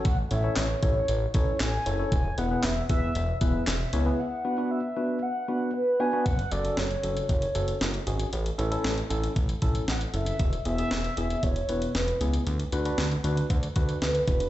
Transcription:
<<
  \new Staff \with { instrumentName = "Soft synth lead" } { \time 4/4 \key fis \minor \tempo 4 = 116 fis''8 e''8 cis''8 cis''4 cis''8 gis''4 | gis''8 fis''8 e''8 e''4 e''8 e''4 | fis''4 e''4 fis''4 b'8 gis''8 | fis''8 d''8 cis''4 cis''4. r8 |
r2. fis''8 e''8~ | e''8 e''4. cis''4 b'8. r16 | r2. b'8 b'8 | }
  \new Staff \with { instrumentName = "Tine electric piano" } { \time 4/4 \key fis \minor r8 <cis' e' a' cis''>16 <cis' e' a' cis''>8 r16 <cis' e' a' cis''>8 r8 <cis' e' a' cis''>8 r8 <cis' e' a' cis''>16 <cis' e' a' cis''>16 | r8 <b e' gis' b'>16 <b e' gis' b'>8 r16 <b e' gis' b'>8 r8 <b e' gis' b'>8 r8 <b e' gis' cis''>16 <b e' gis' b'>16 | r8 <b d' fis' b'>16 <b d' fis' b'>8 r16 <b d' fis' b'>8 r8 <b d' fis' b'>8 r8 <b d' fis' b'>16 <b d' fis' b'>16 | r8 <cis' fis' a'>16 <cis' fis' a'>8 r16 <cis' fis' a'>8 r8 <cis' fis' a'>8 r8 <cis' fis' gis'>8 |
r8 <cis' e' a'>16 <cis' e' a'>8 r16 <cis' e' a'>8 r8 <cis' e' a'>8 r8 <cis' e' a'>8 | r8 <b e' gis'>16 <b e' gis'>8 r16 <b e' gis'>8 r8 <b e' b'>8 r8 <b e' gis'>8 | r8 <d' fis' b'>16 <d' fis' b'>8 r16 <d' fis' b'>8 r8 <d' fis' b'>8 r8 <d' fis' b'>8 | }
  \new Staff \with { instrumentName = "Analog synth bass" } { \clef bass \time 4/4 \key fis \minor a,,8 a,,8 a,,8 a,,8 a,,8 a,,8 a,,8 fis,,8 | e,,8 e,,8 e,,8 e,,8 e,,8 e,,8 e,,8 cis,8 | r1 | fis,,8 fis,,8 fis,,8 fis,,8 fis,,8 fis,,8 fis,,8 gis,,8 |
a,,8 a,,8 a,,8 a,,8 a,,8 a,,8 a,,8 fis,,8 | e,,8 e,,8 e,,8 e,,8 e,,8 e,,8 e,,8 cis,8 | d,8 d,8 d,8 d,8 d,8 d,8 d,8 e,,8 | }
  \new DrumStaff \with { instrumentName = "Drums" } \drummode { \time 4/4 <hh bd>8 hh8 <hc hh sn>8 <hh bd>8 hh8 <hh bd>8 <hc hh sn>8 hh8 | <hh bd>8 hh8 <hc hh sn>8 <hh bd>8 hh8 <hh bd>8 <hc hh sn>8 hh8 | r4 r4 r4 r4 | <hh bd>16 hh16 hh16 hh16 <hh sn>16 hh16 hh16 hh16 <hh bd>16 hh16 hh16 hh16 <hh sn>16 hh16 hh16 hh16 |
hh16 hh16 hh16 hh16 <hh sn>16 hh16 hh16 hh16 <hh bd>16 hh16 <hh bd>16 hh16 <hh sn>16 hh16 hh16 hh16 | <hh bd>16 hh16 hh16 hh16 <hh sn>16 hh16 hh16 hh16 <hh bd>16 hh16 hh16 hh16 <hh sn>16 hh16 hh16 hh16 | hh16 hh16 hh16 hh16 <hh sn>16 hh16 hh16 hh16 <hh bd>16 hh16 <hh bd>16 hh16 <hh sn>16 hh16 <hh bd>16 hh16 | }
>>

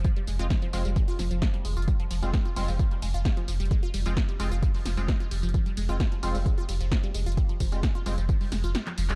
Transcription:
<<
  \new Staff \with { instrumentName = "Analog polysynth" } { \time 4/4 \key f \minor \tempo 4 = 131 r8. <aes c' f'>16 r8 <aes c' f'>16 r2 r16 | r8. <aes c' f'>16 r8 <aes c' f'>16 r2 r16 | r8. <aes c' f'>16 r8 <aes c' f'>16 r4 <aes c' f'>16 r4 | r8. <aes c' f'>16 r8 <aes c' f'>16 r2 r16 |
r8. <aes c' f'>16 r8 <aes c' f'>16 r2 r16 | }
  \new Staff \with { instrumentName = "Synth arpeggio sound" } { \clef bass \time 4/4 \key f \minor f16 g16 aes16 f'16 f16 f16 f16 g16 aes16 f'16 f16 f16 f16 g16 aes16 f'16 | g16 f16 f16 g16 aes16 f'16 g16 f16 f16 g16 aes16 f'16 g16 f16 f16 g16 | aes16 f'16 g16 f16 f16 g16 aes16 f'16 g16 f16 f16 g16 aes16 f'16 g16 f16 | f16 g16 aes16 f'16 g16 f16 f16 g16 aes16 f'16 g16 f16 f16 g16 aes16 f'16 |
g16 f16 f16 g16 aes16 f'16 g16 f16 f16 g16 aes16 f'16 g16 f16 f16 g16 | }
  \new Staff \with { instrumentName = "Sub bass" } { \clef bass \time 4/4 \key f \minor r8 f,,16 f,,16 r8 f,,16 f,,16 r8 f,,16 f,,16 r8 f,,16 f,,16 | r8 f,,16 f,,16 r8 f,,16 f,,16 r8 f,,16 f,,16 r8 f,,16 f,,16 | r8 f,,16 f,,16 r8 f,,16 f,,16 r8 f,,16 f,,16 r8 f,,16 f,,16 | r8 f,,16 f,,16 r8 f,,16 f,,16 r8 f,,16 f,,16 r8 f,,16 f,,16 |
r8 f,,16 f,,16 r8 f,,16 f,,16 r8 f,,16 f,,16 r8 f,,16 f,,16 | }
  \new DrumStaff \with { instrumentName = "Drums" } \drummode { \time 4/4 <hh bd tamb>16 hh16 <hho tamb>16 <hh tamb>16 <hh bd sn tamb>16 hh16 <hho tamb>16 <hh tamb>16 <hh bd tamb>16 hho16 <hho sn tamb>16 <hh tamb>16 <hh bd sn tamb>16 hh16 <hho tamb>16 <hh tamb>32 hh32 | <hh bd tamb>16 hh16 <hho cymr tamb>16 <hh tamb>16 <hh bd sn tamb>16 hh16 <hho cymr tamb>16 <hho tamb>16 <hh bd tamb>16 hh16 <hho cymr tamb>16 <hh tamb>16 <hh bd sn tamb>16 hh16 <hho cymr tamb>16 <hh tamb>32 hh32 | <hh bd tamb>16 hh16 <hho cymr tamb>16 <hh tamb>16 <hh bd sn tamb>16 hh16 <hho cymr tamb>16 <hh tamb>16 <hh bd tamb>16 hho16 <hho cymr sn tamb>16 <hh tamb>16 <hh bd sn tamb>16 hh16 <hho cymr tamb>16 <hh tamb>32 hh32 | <hh bd tamb>16 hh16 <hho cymr tamb>16 <hh tamb>16 <hh bd sn tamb>16 hh16 <hho cymr tamb>16 <hho tamb>16 <hh bd tamb>16 hh16 <hho cymr tamb>16 <hh tamb>16 <hh bd sn tamb>16 hh16 <hho cymr tamb>16 <hh tamb>32 hh32 |
<hh bd tamb>16 hh16 <hho bd cymr tamb>16 <hh tamb>16 <hh bd sn tamb>16 hh16 <hho cymr tamb>16 <hh tamb>16 <hh bd tamb>16 hho16 <hho cymr sn tamb>16 <hh tamb>16 <hh sn tamb>16 <hc hh>16 <hho cymr tamb>16 <hc hh tamb>16 | }
>>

